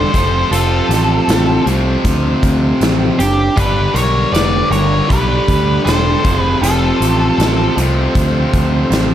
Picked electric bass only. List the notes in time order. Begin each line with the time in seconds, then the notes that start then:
0.14 F1
0.51 F1
0.89 A1
1.28 A1
1.66 C2
2.04 D2
2.43 D2
2.81 A1
3.19 F#1
3.57 G1
3.94 B1
4.32 F1
4.71 G1
5.10 B1
5.48 D2
5.86 E1
6.25 F1
6.62 F1
7.00 A1
7.38 A1
7.77 C2
8.15 D2
8.53 D2
8.90 A1